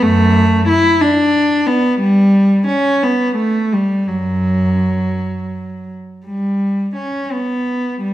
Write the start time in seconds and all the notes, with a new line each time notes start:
0.02 F#2 A3
0.68 E4
1.01 D4
1.67 B3
2.00 G3
2.67 C#4
3.03 B3
3.37 A3
3.73 G3
4.08 F#2 F#3
6.26 G3
6.96 C#4
7.32 B3
8.01 G3